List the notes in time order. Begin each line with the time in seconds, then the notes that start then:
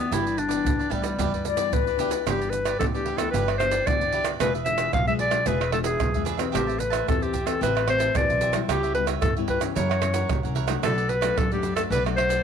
Already playing: B3 G4
0.11 G1 G2 E3 B3 D4 E4 G4 B4 D5, pandeiro, shaker, surdo
0.26 G4 B4 D5, pandeiro, shaker
0.37 D4, muted cavaquinho stroke, pandeiro
0.48 E3 B3 D4 G4 B4 D5, pandeiro, shaker
0.65 D2 D3, pandeiro, shaker, surdo
0.79 G4 B4 D5, pandeiro, shaker
0.90 D2 E3 G3 B3 D4 E4 G4 B4 D5, pandeiro, surdo
1.02 G4 B4 D5, pandeiro, shaker
1.18 D2 G2 E3 B3 D4 E4 G4 B4 D5, pandeiro, shaker, surdo
1.32 D2 G4 B4 D5, pandeiro, shaker
1.45 D5, muted cavaquinho stroke, pandeiro, shaker
1.56 E3 B3 D4 G4 B4 D5, pandeiro, shaker
1.71 D2 D3 B4, pandeiro, shaker, surdo
1.87 G4 B4 D5, pandeiro, shaker
1.97 E3 B3 D4 E4 G4 B4, pandeiro, shaker
2.01 D5
2.11 G4 B4 D5, pandeiro, shaker
2.25 G1 G2 E3 B3 D4 E4 G4 B4 D5, pandeiro, tamborim, shaker, surdo
2.41 G4 B4 D5, pandeiro, shaker
2.50 B4, muted cavaquinho stroke, pandeiro, shaker
2.65 G4 B4 D5, pandeiro, tamborim, shaker
2.79 D2 D3 E3 B3 D4 A4, pandeiro, tamborim, shaker, surdo
2.93 E3 B3 D4 G4 B4 D5, pandeiro, shaker
3.06 E4 G4 B4 D5, pandeiro
3.17 E3 B3 D4 A4, pandeiro, tamborim, shaker
3.31 G1 G2 E4 B4, pandeiro, shaker, surdo
3.35 G4 B4 D5
3.48 G4 B4 D5, pandeiro, tamborim, shaker
3.58 E3 B3 D4 C5, muted cavaquinho stroke, pandeiro, tamborim, shaker
3.71 G4 B4 D5, pandeiro, shaker
3.86 D2 D3 E3 B3 D4 D5, pandeiro, tamborim, shaker, surdo
4.01 G1 G4 B4 D5, pandeiro, shaker
4.12 E4 G4 B4 D5, pandeiro
4.25 G4 B4 D5, pandeiro, tamborim, shaker
4.40 E1 E3 G#3 D4 F4 G#4 B4 E5, pandeiro, tamborim, shaker, surdo
4.54 G#4 B4 E5, pandeiro, shaker
4.65 G#3 D4 F4 E5, muted cavaquinho stroke, pandeiro, shaker
4.78 G#4 B4 E5, pandeiro, tamborim, shaker
4.93 B1 B2 F5, pandeiro, tamborim, shaker, surdo
5.06 G#3 D4 F4 G#4 B4 E5, pandeiro, shaker
5.19 D4 G#4 B4 D5 E5, pandeiro
5.30 G#3 D4 F4, pandeiro, tamborim, shaker
5.46 E1 E3 G#3 D4 F4 G#4 B4 E5, pandeiro, shaker, surdo
5.61 G#4 B4 E5, pandeiro, tamborim, shaker
5.72 G#3 D4 F4 A4, muted cavaquinho stroke, pandeiro, tamborim
5.84 G#4 B4 E5, pandeiro, shaker
6.00 B1 B2, pandeiro, tamborim, shaker, surdo
6.14 E2 G#3 D4 F4 G#4 B4 E5, pandeiro, shaker
6.25 D4 G#4 B4 E5, pandeiro, shaker
6.37 C4 G4 G#4 B4 E5, pandeiro, tamborim, shaker
6.52 A1 A3 G4 C5 E5 A5, pandeiro, tamborim, shaker, surdo
6.67 C5 E5 A5, pandeiro, shaker
6.78 B4, muted cavaquinho stroke, pandeiro, shaker
6.90 C5 E5 A5, pandeiro, tamborim, shaker
7.07 E2 E3 C4 G4 A4 B4, pandeiro, tamborim, shaker, surdo
7.20 G4 C5 E5 A5, pandeiro, shaker
7.33 G4 C5 E5 A5, pandeiro, shaker, surdo
7.46 C4 G4 A4 B4, pandeiro, tamborim, shaker
7.61 A1 A3 G4 B4 C5 E5 A5, pandeiro, shaker, surdo
7.75 C5 E5 A5, pandeiro, tamborim, shaker
7.87 C4 G4 B4 C5, muted cavaquinho stroke, pandeiro, tamborim
7.99 C5 E5 A5, pandeiro, shaker
8.15 E2 E3 C4 G4 B4 D5, pandeiro, tamborim, shaker, surdo
8.29 B1 C5 E5 A5, pandeiro, shaker
8.41 G4 C5 E5 A5, pandeiro, shaker
8.53 G3 B3 E4 C5 E5 A5, pandeiro, tamborim, shaker
8.68 C#2 C#3 G4 B4 C#5 E5, pandeiro, tamborim, shaker, surdo
8.83 B4 C#5 E5, pandeiro, shaker
8.95 G3 B3 E4 B4, muted cavaquinho stroke, pandeiro
9.07 B4 C#5 E5, pandeiro, tamborim, shaker
9.22 G2 C#3 A4, pandeiro, tamborim, shaker, surdo
9.37 G3 B3 E4 B4 C#5 E5, pandeiro, shaker
9.47 G4 B4 C#5 E5, pandeiro, surdo
9.61 E3 A#3 C#4, pandeiro, tamborim, shaker
9.75 F#2 E4 A#4 C#5 F#5, pandeiro, shaker, surdo
9.89 A#4 C#5 F#5, pandeiro, tamborim, shaker
10.02 E3 A#3 C#4, muted cavaquinho stroke, pandeiro, tamborim, shaker
10.14 A#4 C#5 F#5, pandeiro, shaker
10.29 C#2, pandeiro, tamborim, shaker, surdo
10.43 C2 E3 A#3 C#4 A#4 C#5 F#5, pandeiro, shaker
10.55 E4 A#4 C#5 F#5, pandeiro
10.67 F#3 A3 D4 A#4 C#5 F#5, pandeiro, tamborim, shaker
10.83 B1 B2 D4 A4 B4 D5, pandeiro, tamborim, shaker, surdo
10.98 A4 B4 D5, pandeiro, shaker
11.09 B4, muted cavaquinho stroke, pandeiro
11.21 F#3 A3 D4 A4 B4 D5, pandeiro, tamborim, shaker
11.38 F#2 A4, pandeiro, tamborim, shaker, surdo
11.51 F#3 A3 D4 G4 A4 B4 D5, pandeiro, shaker
11.62 D4 A4 B4 D5, pandeiro, shaker
11.76 F#3 A3 D4 A4, pandeiro, tamborim, shaker
11.90 B1 B2 D4 A4 B4 D5, pandeiro, shaker, surdo
12.04 F#3 A3 D4 A4 B4 D5, pandeiro, tamborim, shaker
12.16 C5, muted cavaquinho stroke, pandeiro, tamborim
12.29 A4 B4 D5, pandeiro, shaker